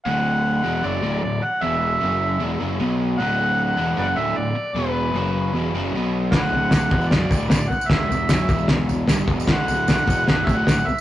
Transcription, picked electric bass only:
\new Staff \with { instrumentName = "Picked electric bass" } { \clef bass \time 4/4 \key d \major \tempo 4 = 153 d,,4. e,,8 fis,,8 d,,8 d,,8 r8 | e,,4 fis,,4 e,,8 fis,,8 b,,4 | d,,4. e,,8 fis,,8 d,,8 d,,8 r8 | e,,4 fis,,4 e,,8 fis,,8 b,,4 |
d,,4. e,,8 fis,,8 d,,8 d,,8 r8 | e,,4 fis,,8 e,,4. g,,8 e,,8 | d,,4. e,,8 fis,,8 d,,8 d,,8 r8 | }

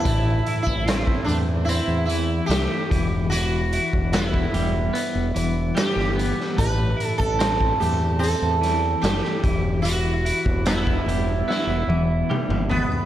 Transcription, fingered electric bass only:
\new Staff \with { instrumentName = "Fingered electric bass" } { \clef bass \time 4/4 \key e \minor \tempo 4 = 73 a,,8 r16 a,,8. e,8. e,8. c,16 r16 e,,8~ | e,,8. e,,8. e,,8 r16 e,,16 e,,8 r16 g,,8 r16 | a,,8 r16 a,,8. e,8. e,8. fis,,16 r16 e,,8~ | e,,8. e,,8. e,,8 r16 e,,16 e,,8 r16 g,,8 r16 | }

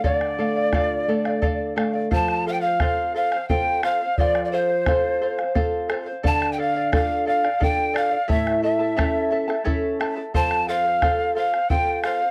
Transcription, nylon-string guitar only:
\new Staff \with { instrumentName = "Nylon-string guitar" } { \time 3/4 \key f \major \tempo 4 = 88 d8 a8 f'8 a8 a'8 a8 | f4 <c' a'>4 <c' f' a'>4 | f4 <c' f' a'>4 <c' f' a'>4 | d4 <d' f' a'>4 <d' f' a'>4 |
a,4 <cis' e' a'>4 <cis' e' a'>4 | f,4 <c' f' a'>4 <c' f' a'>4 | }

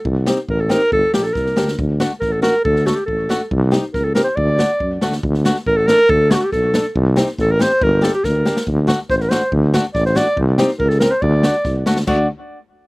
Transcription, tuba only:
\new Staff \with { instrumentName = "Tuba" } { \clef bass \time 2/4 \tempo 4 = 140 c,4 a,,4 | g,,8 bes,,8 c,8 d,8 | d,4 a,,4 | d,4 a,,4 |
c,4 cis,4 | d,4 fis,8 d,8 | d,4 a,,4 | d,4 b,,4 |
c,4 a,,4 | g,,4 d,4 | d,4 a,,4 | d,4 a,,4 |
c,4 cis,4 | d,4 c,8 d,8 | d,8 r4. | }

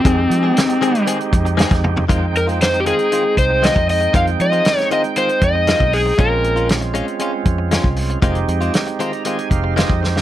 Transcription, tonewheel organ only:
\new Staff \with { instrumentName = "Tonewheel organ" } { \time 4/4 \key f \minor \tempo 4 = 117 << { r1 | r1 | r1 | r1 |
r4. bes''8 aes''8 f''8 ees''8 c''8 | } \\ { <aes c' ees' g'>1 | <aes c' ees' g''>1~ | <aes c' ees' g''>1 | <aes c' des' f'>1 |
<aes c' ees' g'>1 | } >> }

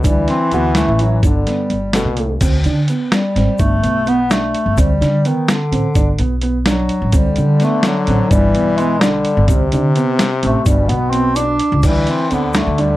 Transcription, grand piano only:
\new Staff \with { instrumentName = "Grand piano" } { \time 5/8 \key g \major \tempo 4 = 127 d'4 fis'8 e'8 e'8 | d'8 b4 a8 a8 | c'8 d'8 b4 c'8 | d'8 b8 b8 d'4 |
c'8 d'8 b4 c'8 | d'8 b8 b8 d'4 | c'8 d'8 b4 c'8 | d'8 b8 b8 d'4 |
c'8 d'8 b4 c'8 | d'8 b8 b8 d'4 | d'4 c'8 d'8 d'8 | }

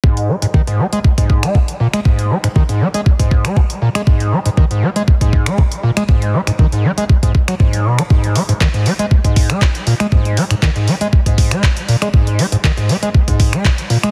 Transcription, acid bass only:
\new Staff \with { instrumentName = "Acid bass" } { \clef bass \time 4/4 \key dis \minor \tempo 4 = 119 gis,8 gis16 gis,16 dis16 gis,16 gis16 gis16 r16 gis,8 gis16 gis,16 r16 ais,16 gis16 | gis,8 gis16 gis,16 dis16 gis,16 gis16 gis16 r16 gis,8 gis16 gis,16 r16 ais,16 gis16 | gis,8 gis16 gis,16 dis16 gis,16 gis16 gis16 r16 gis,8 gis16 gis,16 r16 ais,16 gis16 | gis,8 gis16 gis,16 dis16 gis,16 gis16 gis16 r16 gis,16 r16 fis16 gis,8 b,16 gis16 |
gis,8 gis16 gis,16 dis16 gis,16 gis16 gis16 r16 gis,8 gis16 gis,16 r16 ais,16 gis16 | gis,8 gis16 gis,16 dis16 gis,16 gis16 gis16 r16 gis,8 gis16 gis,16 r16 ais,16 gis16 | gis,8 gis16 gis,16 dis16 gis,16 gis16 gis16 r16 gis,8 gis16 gis,16 r16 ais,16 gis16 | }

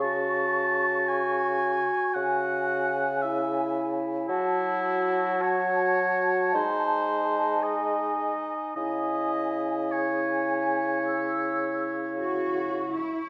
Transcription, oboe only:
\new Staff \with { instrumentName = "Oboe" } { \time 12/8 \key cis \minor \tempo 4. = 54 a''4. gis''4. fis''4. e''4 r8 | e'4. cis''4. bis'4. dis''4. | dis''4. cis''1 r8 | }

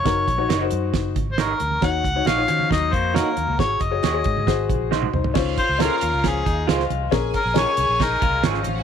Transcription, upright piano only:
\new Staff \with { instrumentName = "Upright piano" } { \time 4/4 \key des \major \tempo 4 = 136 << { r1 | r1 | r2. <ges' ees''>8 <ees' c''>8~ | <ees' c''>8 r2. r8 |
r1 | } \\ { <ees' ges' bes'>8 r16 <ees' ges' des''>16 r16 <ees' ges' c''>4~ <ees' ges' c''>16 r4. | <ees' ges' des''>8 r16 <ees' ges' des''>16 r16 <ees' f' ges' des''>4~ <ees' f' ges' des''>16 r4. | <ges' aes' des''>8 r16 <ges' aes' des''>16 r16 <ges' aes' des''>8. <ges' aes' c''>4 r4 | <des' f' c''>8 r8 <des' f' a' bes'>4~ <des' f' a' bes'>16 r4. r16 |
<des' aes' bes'>8 r8 <des' aes' bes'>4~ <des' aes' bes'>16 r4. r16 | } >> }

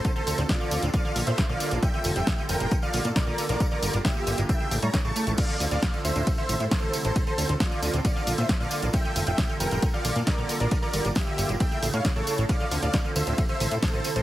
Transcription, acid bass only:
\new Staff \with { instrumentName = "Acid bass" } { \clef bass \time 4/4 \key d \minor \tempo 4 = 135 d16 d16 d16 a,16 c16 d16 d16 a,16 d16 d16 d16 a,16 c16 d16 d16 a,16 | d16 d16 d16 a,16 c16 d16 d16 a,16 d16 d16 d16 a,16 c16 d16 d16 a,16 | d16 d16 d16 a,16 c16 d16 d16 a,16 cis16 cis16 cis16 g16 e16 cis16 a16 cis,16 | d16 d16 d16 a,16 c16 d16 d16 a,16 d16 d16 d16 a,16 c16 d16 d16 a,16 |
d16 d16 d16 a,16 c16 d16 d16 a,16 d16 d16 d16 a,16 c16 d16 d16 a,16 | r16 d16 d16 a,16 c16 d16 d16 a,16 d16 d16 d16 a,16 c16 d16 d16 a,16 | d16 d16 d16 a,16 c16 d16 d16 a,16 cis16 cis16 cis16 a,16 cis16 cis16 cis16 a,16 | d16 d16 d16 a,16 c16 d16 d16 a,16 d16 d16 d16 a,16 c16 d16 d16 a,16 | }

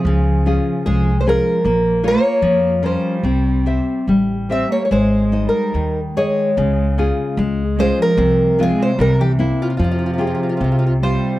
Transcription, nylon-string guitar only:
\new Staff \with { instrumentName = "Nylon-string guitar" } { \time 2/4 \key f \minor \tempo 4 = 74 des8 <des' f' aes'>8 aes8 <des' f' aes'>8 | bes8 <f' bes' des''>8 f8 <des' f' bes'>8 | c'8 <g' c'' e''>8 g8 <g' c'' e''>8 | aes8 <ees' c'' ees''>8 ees8 <aes' ees''>8 |
des8 <des' f' aes'>8 aes8 <des' f' aes'>8 | c8 <aes c' f'>8 c8 <bes c' e'>8 | f8 <f' g' aes'>8 c8 <f' g' c''>8 | }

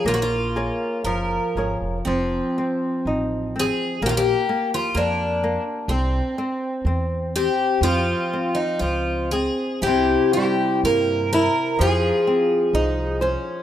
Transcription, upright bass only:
\new Staff \with { instrumentName = "Upright bass" } { \clef bass \time 2/4 \key bes \minor \tempo 4 = 62 bes,,4 ges,,8 aes,,16 f,,16 | \key f \minor f,,8 r8 a,,4 | bes,,8 r8 f,4 | c,8 r8 e,4 |
f,8 r8 des,4 | c,8 r8 g,4 | f,8 r8 c,4 | }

